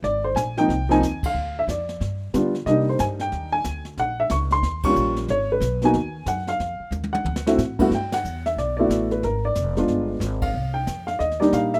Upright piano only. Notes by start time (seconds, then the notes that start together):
0.04 D5
0.24 C5
0.36 G#5
0.57 F3 A#3 C4 D#4 G5
0.89 F3 A#3 C4 D#4 G#5
1.26 F5
1.59 E5
1.70 D5
2.34 G3 B3 D4 F4
2.66 G3 A#3 D4 D#4 D#5
2.89 C5
3.00 G#5
3.21 G5
3.52 G#5
4.00 F#5
4.20 E5
4.31 C#6
4.52 C6
4.85 G3 A#3 C#4 F4 C#6
5.30 C#5
5.52 B4
5.83 A#3 B3 D#4 F#4 G#5
6.28 F#5
6.49 F5
7.13 F#5
7.47 A3 C4 E4 F#4
7.79 G2 A3 B3 E4 F#4 F#5
7.95 G5
8.14 F#5
8.46 E5
8.58 D5
8.77 A3 B3 E4 F#4 D5
9.12 B4
9.24 A#4
9.45 D5
9.77 G#3 B3 D4 F4
10.42 F5
10.74 G5
11.07 F5
11.19 D#5
11.40 G3 A#3 D4 D#4 D5
11.54 F5
11.74 E5